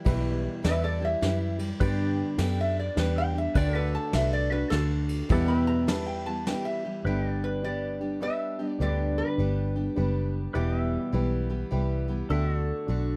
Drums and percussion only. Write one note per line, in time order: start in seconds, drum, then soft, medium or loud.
0.06 kick loud
0.06 ride medium
0.64 snare loud
0.64 ride medium
1.22 snare medium
1.22 ride soft
1.59 ride medium
1.80 kick loud
1.80 ride medium
2.38 snare medium
2.38 ride medium
2.97 snare medium
2.97 ride medium
3.55 kick loud
3.55 ride medium
4.13 snare medium
4.13 ride medium
4.72 snare medium
4.72 ride medium
5.09 ride medium
5.30 kick loud
5.30 ride medium
5.88 snare loud
5.88 ride medium
6.47 snare medium
6.47 ride medium